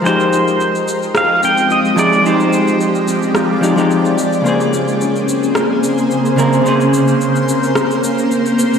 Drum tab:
SH |xxxxxxxxx-xxxxxx|xxxxxxxxx-xxxxxx|xxxxxxxxx-xxxxxx|xxxxxxxxxxxxxxxx|
SD |--------r-------|--------r-------|--------r-------|--------r-------|